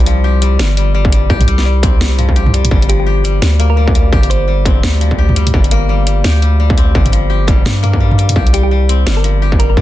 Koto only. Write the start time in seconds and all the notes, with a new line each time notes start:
Already playing: G3 C4 G4
0.07 F3
0.24 G4
0.42 G3
0.59 G3
0.77 G3
0.94 G3
1.12 G3
1.30 G4
1.48 G3
1.65 G3
1.83 C4
2.01 G3
2.18 F3
2.36 G4
2.54 G3
2.71 G3
2.89 F3
3.06 G4
3.24 G3
3.59 A#3
3.77 G3
3.95 G3
4.13 G4
4.30 G3
4.48 G3
4.66 C4
4.83 G3
5.01 F3
5.18 G4
5.36 G3
5.54 G3
5.71 A#3
5.89 G3
6.07 G3
6.24 G4
6.42 G3
6.60 G3
6.77 C4
6.95 G3
7.12 F3
7.30 G4
7.47 G3
7.65 G3
7.83 A#3
8.00 G3
8.18 G3
8.36 G4
8.53 G3
8.71 G3
8.89 C4
9.06 G3
9.24 F3
9.42 G4
9.60 G3
9.77 G3